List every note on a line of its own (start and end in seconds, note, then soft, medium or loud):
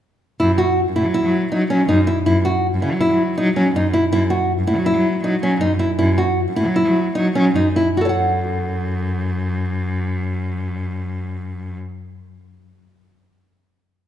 0.40 0.57 F#2 medium
0.40 0.51 E4 medium
0.58 0.79 F#4 medium
0.88 0.96 F#2 medium
0.96 1.07 A2 medium
0.96 1.07 E4 medium
1.06 1.14 F#3 medium
1.14 1.35 E4 medium
1.24 1.49 F#3 medium
1.52 1.68 F#3 medium
1.52 1.62 D#4 medium
1.70 1.87 F#3 medium
1.70 1.81 C#4 medium
1.89 2.06 F#2 medium
1.89 1.99 D#4 medium
2.07 2.18 E4 medium
2.26 2.43 F#2 medium
2.26 2.37 E4 medium
2.45 2.66 F#4 medium
2.74 2.82 F#2 medium
2.82 2.94 C#3 medium
2.82 2.93 E4 medium
2.92 3.00 F#3 medium
3.00 3.21 E4 medium
3.11 3.35 F#3 medium
3.38 3.54 F#3 medium
3.38 3.48 D#4 medium
3.56 3.73 F#3 medium
3.56 3.67 C#4 medium
3.75 3.91 F#2 medium
3.75 3.86 D#4 medium
3.93 4.04 E4 medium
4.12 4.28 F#2 medium
4.12 4.23 E4 medium
4.30 4.51 F#4 medium
4.59 4.67 F#2 medium
4.67 4.78 A2 medium
4.67 4.78 E4 medium
4.77 4.85 F#3 medium
4.86 5.07 E4 medium
4.95 5.20 F#3 medium
5.24 5.40 F#3 medium
5.24 5.34 D#4 medium
5.43 5.59 F#3 medium
5.43 5.53 C#4 medium
5.61 5.78 F#2 medium
5.61 5.71 D#4 medium
5.79 5.90 E4 medium
5.99 6.16 F#2 medium
5.99 6.09 E4 medium
6.18 6.39 F#4 medium
6.48 6.56 F#2 medium
6.56 6.68 A2 medium
6.56 6.67 E4 medium
6.66 6.75 F#3 medium
6.76 6.98 E4 medium
6.87 7.12 F#3 medium
7.15 7.33 F#3 medium
7.15 7.27 D#4 medium
7.35 7.54 F#3 medium
7.35 7.47 C#4 medium
7.55 7.74 F#2 medium
7.55 7.67 D#4 medium
7.76 7.88 E4 medium
7.97 11.77 F#2 medium
7.97 8.09 F#4 soft
7.97 11.80 A4 soft
8.05 11.84 C#5 soft
8.09 11.89 F#5 soft